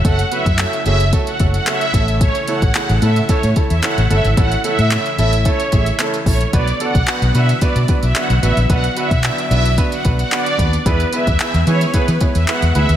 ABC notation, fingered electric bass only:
X:1
M:4/4
L:1/16
Q:1/4=111
K:A
V:1 name="Fingered electric bass" clef=bass
F,,,2 z F,,2 z F,,,3 z F,,,2 z2 A,,,2- | A,,,2 z A,,, z A,,, A,,2 z A,, z E,, z A,,, =G,,, ^G,,, | A,,,2 z A,,2 z A,,,3 z A,,,2 z2 ^A,,,2 | B,,,2 z B,,, z B,,, B,,2 z B,, z B,,, z B,,, A,,, ^A,,, |
B,,,2 z B,,2 z B,,,3 z B,,,2 z2 ^D,,2 | E,,2 z E,, z E,, E,2 z E, z E,, z E,, D,, ^D,, |]